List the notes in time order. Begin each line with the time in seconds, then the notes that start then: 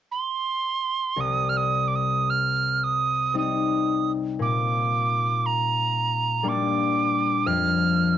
0.12 C6
1.16 C2
1.21 D#6
1.49 F6
1.57 D#6
1.88 D6
1.95 D#6
2.30 F6
2.84 D#6
3.34 G3 C4 D#4
3.38 D#6
4.39 A#2 D6
5.46 A#5
6.43 G3 A#3 D4
6.48 D6
7.46 F2 F6